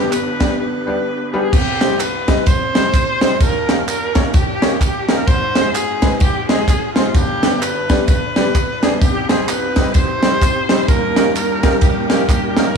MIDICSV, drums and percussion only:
0, 0, Header, 1, 2, 480
1, 0, Start_track
1, 0, Tempo, 468019
1, 1570, Time_signature, 4, 2, 24, 8
1, 13098, End_track
2, 0, Start_track
2, 0, Title_t, "Drums"
2, 128, Note_on_c, 9, 39, 101
2, 128, Note_on_c, 9, 54, 105
2, 129, Note_on_c, 9, 51, 68
2, 231, Note_off_c, 9, 39, 0
2, 231, Note_off_c, 9, 54, 0
2, 232, Note_off_c, 9, 51, 0
2, 413, Note_on_c, 9, 51, 68
2, 416, Note_on_c, 9, 38, 117
2, 416, Note_on_c, 9, 54, 61
2, 417, Note_on_c, 9, 36, 92
2, 515, Note_off_c, 9, 51, 0
2, 518, Note_off_c, 9, 38, 0
2, 519, Note_off_c, 9, 54, 0
2, 520, Note_off_c, 9, 36, 0
2, 1569, Note_on_c, 9, 36, 119
2, 1569, Note_on_c, 9, 49, 102
2, 1571, Note_on_c, 9, 54, 88
2, 1671, Note_off_c, 9, 36, 0
2, 1672, Note_off_c, 9, 49, 0
2, 1674, Note_off_c, 9, 54, 0
2, 1858, Note_on_c, 9, 38, 114
2, 1859, Note_on_c, 9, 39, 68
2, 1859, Note_on_c, 9, 51, 61
2, 1859, Note_on_c, 9, 54, 54
2, 1961, Note_off_c, 9, 38, 0
2, 1961, Note_off_c, 9, 39, 0
2, 1961, Note_off_c, 9, 51, 0
2, 1961, Note_off_c, 9, 54, 0
2, 2051, Note_on_c, 9, 51, 79
2, 2052, Note_on_c, 9, 39, 110
2, 2052, Note_on_c, 9, 54, 105
2, 2154, Note_off_c, 9, 39, 0
2, 2154, Note_off_c, 9, 51, 0
2, 2154, Note_off_c, 9, 54, 0
2, 2336, Note_on_c, 9, 51, 71
2, 2339, Note_on_c, 9, 38, 113
2, 2342, Note_on_c, 9, 54, 65
2, 2343, Note_on_c, 9, 36, 89
2, 2439, Note_off_c, 9, 51, 0
2, 2442, Note_off_c, 9, 38, 0
2, 2444, Note_off_c, 9, 54, 0
2, 2446, Note_off_c, 9, 36, 0
2, 2526, Note_on_c, 9, 51, 72
2, 2532, Note_on_c, 9, 36, 116
2, 2532, Note_on_c, 9, 54, 82
2, 2629, Note_off_c, 9, 51, 0
2, 2634, Note_off_c, 9, 36, 0
2, 2635, Note_off_c, 9, 54, 0
2, 2822, Note_on_c, 9, 51, 63
2, 2823, Note_on_c, 9, 38, 117
2, 2833, Note_on_c, 9, 54, 55
2, 2924, Note_off_c, 9, 51, 0
2, 2925, Note_off_c, 9, 38, 0
2, 2935, Note_off_c, 9, 54, 0
2, 3011, Note_on_c, 9, 36, 97
2, 3011, Note_on_c, 9, 51, 67
2, 3023, Note_on_c, 9, 39, 91
2, 3023, Note_on_c, 9, 54, 93
2, 3114, Note_off_c, 9, 36, 0
2, 3114, Note_off_c, 9, 51, 0
2, 3126, Note_off_c, 9, 39, 0
2, 3126, Note_off_c, 9, 54, 0
2, 3296, Note_on_c, 9, 38, 118
2, 3300, Note_on_c, 9, 51, 62
2, 3309, Note_on_c, 9, 54, 57
2, 3399, Note_off_c, 9, 38, 0
2, 3402, Note_off_c, 9, 51, 0
2, 3411, Note_off_c, 9, 54, 0
2, 3493, Note_on_c, 9, 36, 115
2, 3493, Note_on_c, 9, 51, 85
2, 3503, Note_on_c, 9, 54, 81
2, 3595, Note_off_c, 9, 36, 0
2, 3596, Note_off_c, 9, 51, 0
2, 3606, Note_off_c, 9, 54, 0
2, 3783, Note_on_c, 9, 38, 122
2, 3783, Note_on_c, 9, 51, 61
2, 3791, Note_on_c, 9, 39, 72
2, 3791, Note_on_c, 9, 54, 57
2, 3885, Note_off_c, 9, 38, 0
2, 3885, Note_off_c, 9, 51, 0
2, 3893, Note_off_c, 9, 39, 0
2, 3893, Note_off_c, 9, 54, 0
2, 3977, Note_on_c, 9, 51, 80
2, 3983, Note_on_c, 9, 39, 107
2, 3983, Note_on_c, 9, 54, 111
2, 4079, Note_off_c, 9, 51, 0
2, 4086, Note_off_c, 9, 39, 0
2, 4086, Note_off_c, 9, 54, 0
2, 4257, Note_on_c, 9, 51, 69
2, 4261, Note_on_c, 9, 38, 116
2, 4266, Note_on_c, 9, 36, 99
2, 4266, Note_on_c, 9, 54, 65
2, 4360, Note_off_c, 9, 51, 0
2, 4363, Note_off_c, 9, 38, 0
2, 4368, Note_off_c, 9, 36, 0
2, 4369, Note_off_c, 9, 54, 0
2, 4447, Note_on_c, 9, 51, 77
2, 4453, Note_on_c, 9, 36, 125
2, 4458, Note_on_c, 9, 54, 83
2, 4549, Note_off_c, 9, 51, 0
2, 4556, Note_off_c, 9, 36, 0
2, 4561, Note_off_c, 9, 54, 0
2, 4740, Note_on_c, 9, 38, 115
2, 4740, Note_on_c, 9, 51, 62
2, 4750, Note_on_c, 9, 54, 54
2, 4842, Note_off_c, 9, 51, 0
2, 4843, Note_off_c, 9, 38, 0
2, 4852, Note_off_c, 9, 54, 0
2, 4930, Note_on_c, 9, 51, 67
2, 4931, Note_on_c, 9, 36, 84
2, 4942, Note_on_c, 9, 39, 98
2, 4942, Note_on_c, 9, 54, 93
2, 5032, Note_off_c, 9, 51, 0
2, 5034, Note_off_c, 9, 36, 0
2, 5045, Note_off_c, 9, 39, 0
2, 5045, Note_off_c, 9, 54, 0
2, 5216, Note_on_c, 9, 38, 125
2, 5219, Note_on_c, 9, 51, 60
2, 5230, Note_on_c, 9, 54, 53
2, 5318, Note_off_c, 9, 38, 0
2, 5322, Note_off_c, 9, 51, 0
2, 5332, Note_off_c, 9, 54, 0
2, 5410, Note_on_c, 9, 51, 78
2, 5411, Note_on_c, 9, 36, 118
2, 5421, Note_on_c, 9, 54, 82
2, 5513, Note_off_c, 9, 36, 0
2, 5513, Note_off_c, 9, 51, 0
2, 5523, Note_off_c, 9, 54, 0
2, 5697, Note_on_c, 9, 38, 117
2, 5697, Note_on_c, 9, 51, 67
2, 5710, Note_on_c, 9, 39, 75
2, 5710, Note_on_c, 9, 54, 55
2, 5800, Note_off_c, 9, 38, 0
2, 5800, Note_off_c, 9, 51, 0
2, 5813, Note_off_c, 9, 39, 0
2, 5813, Note_off_c, 9, 54, 0
2, 5891, Note_on_c, 9, 51, 75
2, 5902, Note_on_c, 9, 39, 110
2, 5902, Note_on_c, 9, 54, 112
2, 5994, Note_off_c, 9, 51, 0
2, 6005, Note_off_c, 9, 39, 0
2, 6005, Note_off_c, 9, 54, 0
2, 6174, Note_on_c, 9, 51, 69
2, 6177, Note_on_c, 9, 38, 112
2, 6182, Note_on_c, 9, 36, 97
2, 6189, Note_on_c, 9, 54, 64
2, 6276, Note_off_c, 9, 51, 0
2, 6279, Note_off_c, 9, 38, 0
2, 6284, Note_off_c, 9, 36, 0
2, 6292, Note_off_c, 9, 54, 0
2, 6360, Note_on_c, 9, 51, 77
2, 6369, Note_on_c, 9, 36, 121
2, 6378, Note_on_c, 9, 54, 82
2, 6463, Note_off_c, 9, 51, 0
2, 6472, Note_off_c, 9, 36, 0
2, 6481, Note_off_c, 9, 54, 0
2, 6657, Note_on_c, 9, 51, 59
2, 6658, Note_on_c, 9, 38, 115
2, 6667, Note_on_c, 9, 54, 57
2, 6760, Note_off_c, 9, 51, 0
2, 6761, Note_off_c, 9, 38, 0
2, 6770, Note_off_c, 9, 54, 0
2, 6848, Note_on_c, 9, 36, 88
2, 6849, Note_on_c, 9, 51, 69
2, 6861, Note_on_c, 9, 39, 98
2, 6861, Note_on_c, 9, 54, 95
2, 6951, Note_off_c, 9, 36, 0
2, 6951, Note_off_c, 9, 51, 0
2, 6964, Note_off_c, 9, 39, 0
2, 6964, Note_off_c, 9, 54, 0
2, 7136, Note_on_c, 9, 38, 127
2, 7139, Note_on_c, 9, 51, 59
2, 7147, Note_on_c, 9, 54, 61
2, 7238, Note_off_c, 9, 38, 0
2, 7242, Note_off_c, 9, 51, 0
2, 7250, Note_off_c, 9, 54, 0
2, 7329, Note_on_c, 9, 36, 116
2, 7330, Note_on_c, 9, 51, 77
2, 7338, Note_on_c, 9, 54, 80
2, 7431, Note_off_c, 9, 36, 0
2, 7433, Note_off_c, 9, 51, 0
2, 7440, Note_off_c, 9, 54, 0
2, 7619, Note_on_c, 9, 38, 121
2, 7620, Note_on_c, 9, 51, 64
2, 7626, Note_on_c, 9, 39, 71
2, 7626, Note_on_c, 9, 54, 53
2, 7722, Note_off_c, 9, 38, 0
2, 7722, Note_off_c, 9, 51, 0
2, 7728, Note_off_c, 9, 39, 0
2, 7728, Note_off_c, 9, 54, 0
2, 7813, Note_on_c, 9, 51, 81
2, 7820, Note_on_c, 9, 39, 116
2, 7820, Note_on_c, 9, 54, 106
2, 7915, Note_off_c, 9, 51, 0
2, 7922, Note_off_c, 9, 39, 0
2, 7922, Note_off_c, 9, 54, 0
2, 8097, Note_on_c, 9, 51, 67
2, 8100, Note_on_c, 9, 38, 124
2, 8101, Note_on_c, 9, 36, 97
2, 8101, Note_on_c, 9, 54, 64
2, 8199, Note_off_c, 9, 51, 0
2, 8202, Note_off_c, 9, 38, 0
2, 8203, Note_off_c, 9, 36, 0
2, 8203, Note_off_c, 9, 54, 0
2, 8283, Note_on_c, 9, 51, 74
2, 8288, Note_on_c, 9, 36, 111
2, 8292, Note_on_c, 9, 54, 90
2, 8386, Note_off_c, 9, 51, 0
2, 8391, Note_off_c, 9, 36, 0
2, 8395, Note_off_c, 9, 54, 0
2, 8575, Note_on_c, 9, 51, 67
2, 8576, Note_on_c, 9, 38, 112
2, 8585, Note_on_c, 9, 54, 60
2, 8678, Note_off_c, 9, 51, 0
2, 8679, Note_off_c, 9, 38, 0
2, 8688, Note_off_c, 9, 54, 0
2, 8767, Note_on_c, 9, 36, 90
2, 8767, Note_on_c, 9, 51, 62
2, 8774, Note_on_c, 9, 39, 97
2, 8774, Note_on_c, 9, 54, 97
2, 8869, Note_off_c, 9, 36, 0
2, 8869, Note_off_c, 9, 51, 0
2, 8877, Note_off_c, 9, 39, 0
2, 8877, Note_off_c, 9, 54, 0
2, 9054, Note_on_c, 9, 38, 126
2, 9057, Note_on_c, 9, 51, 61
2, 9058, Note_on_c, 9, 54, 57
2, 9156, Note_off_c, 9, 38, 0
2, 9160, Note_off_c, 9, 51, 0
2, 9161, Note_off_c, 9, 54, 0
2, 9247, Note_on_c, 9, 36, 119
2, 9248, Note_on_c, 9, 51, 75
2, 9252, Note_on_c, 9, 54, 80
2, 9349, Note_off_c, 9, 36, 0
2, 9350, Note_off_c, 9, 51, 0
2, 9354, Note_off_c, 9, 54, 0
2, 9532, Note_on_c, 9, 38, 119
2, 9532, Note_on_c, 9, 51, 63
2, 9544, Note_on_c, 9, 39, 74
2, 9544, Note_on_c, 9, 54, 55
2, 9634, Note_off_c, 9, 38, 0
2, 9635, Note_off_c, 9, 51, 0
2, 9646, Note_off_c, 9, 39, 0
2, 9646, Note_off_c, 9, 54, 0
2, 9726, Note_on_c, 9, 51, 80
2, 9729, Note_on_c, 9, 39, 110
2, 9729, Note_on_c, 9, 54, 112
2, 9829, Note_off_c, 9, 51, 0
2, 9831, Note_off_c, 9, 39, 0
2, 9831, Note_off_c, 9, 54, 0
2, 10009, Note_on_c, 9, 51, 67
2, 10012, Note_on_c, 9, 38, 120
2, 10017, Note_on_c, 9, 36, 103
2, 10019, Note_on_c, 9, 54, 62
2, 10111, Note_off_c, 9, 51, 0
2, 10114, Note_off_c, 9, 38, 0
2, 10119, Note_off_c, 9, 36, 0
2, 10122, Note_off_c, 9, 54, 0
2, 10195, Note_on_c, 9, 51, 75
2, 10204, Note_on_c, 9, 36, 119
2, 10212, Note_on_c, 9, 54, 78
2, 10297, Note_off_c, 9, 51, 0
2, 10306, Note_off_c, 9, 36, 0
2, 10314, Note_off_c, 9, 54, 0
2, 10487, Note_on_c, 9, 51, 61
2, 10488, Note_on_c, 9, 38, 119
2, 10506, Note_on_c, 9, 54, 54
2, 10590, Note_off_c, 9, 38, 0
2, 10590, Note_off_c, 9, 51, 0
2, 10608, Note_off_c, 9, 54, 0
2, 10680, Note_on_c, 9, 51, 68
2, 10682, Note_on_c, 9, 36, 84
2, 10695, Note_on_c, 9, 39, 103
2, 10695, Note_on_c, 9, 54, 97
2, 10783, Note_off_c, 9, 51, 0
2, 10785, Note_off_c, 9, 36, 0
2, 10798, Note_off_c, 9, 39, 0
2, 10798, Note_off_c, 9, 54, 0
2, 10966, Note_on_c, 9, 38, 127
2, 10970, Note_on_c, 9, 51, 61
2, 10978, Note_on_c, 9, 54, 57
2, 11069, Note_off_c, 9, 38, 0
2, 11072, Note_off_c, 9, 51, 0
2, 11081, Note_off_c, 9, 54, 0
2, 11162, Note_on_c, 9, 36, 111
2, 11163, Note_on_c, 9, 51, 77
2, 11169, Note_on_c, 9, 54, 82
2, 11265, Note_off_c, 9, 36, 0
2, 11266, Note_off_c, 9, 51, 0
2, 11271, Note_off_c, 9, 54, 0
2, 11450, Note_on_c, 9, 38, 114
2, 11450, Note_on_c, 9, 51, 61
2, 11459, Note_on_c, 9, 39, 78
2, 11459, Note_on_c, 9, 54, 50
2, 11552, Note_off_c, 9, 38, 0
2, 11553, Note_off_c, 9, 51, 0
2, 11562, Note_off_c, 9, 39, 0
2, 11562, Note_off_c, 9, 54, 0
2, 11645, Note_on_c, 9, 51, 79
2, 11653, Note_on_c, 9, 39, 107
2, 11653, Note_on_c, 9, 54, 107
2, 11748, Note_off_c, 9, 51, 0
2, 11756, Note_off_c, 9, 39, 0
2, 11756, Note_off_c, 9, 54, 0
2, 11929, Note_on_c, 9, 51, 69
2, 11932, Note_on_c, 9, 38, 114
2, 11934, Note_on_c, 9, 36, 95
2, 11938, Note_on_c, 9, 54, 67
2, 12031, Note_off_c, 9, 51, 0
2, 12034, Note_off_c, 9, 38, 0
2, 12037, Note_off_c, 9, 36, 0
2, 12040, Note_off_c, 9, 54, 0
2, 12115, Note_on_c, 9, 51, 76
2, 12122, Note_on_c, 9, 36, 120
2, 12131, Note_on_c, 9, 54, 82
2, 12217, Note_off_c, 9, 51, 0
2, 12225, Note_off_c, 9, 36, 0
2, 12234, Note_off_c, 9, 54, 0
2, 12407, Note_on_c, 9, 51, 61
2, 12408, Note_on_c, 9, 38, 111
2, 12427, Note_on_c, 9, 54, 54
2, 12510, Note_off_c, 9, 38, 0
2, 12510, Note_off_c, 9, 51, 0
2, 12529, Note_off_c, 9, 54, 0
2, 12600, Note_on_c, 9, 51, 67
2, 12602, Note_on_c, 9, 36, 89
2, 12614, Note_on_c, 9, 39, 95
2, 12614, Note_on_c, 9, 54, 98
2, 12703, Note_off_c, 9, 51, 0
2, 12704, Note_off_c, 9, 36, 0
2, 12716, Note_off_c, 9, 39, 0
2, 12716, Note_off_c, 9, 54, 0
2, 12887, Note_on_c, 9, 38, 126
2, 12890, Note_on_c, 9, 51, 63
2, 12897, Note_on_c, 9, 54, 56
2, 12989, Note_off_c, 9, 38, 0
2, 12993, Note_off_c, 9, 51, 0
2, 13000, Note_off_c, 9, 54, 0
2, 13098, End_track
0, 0, End_of_file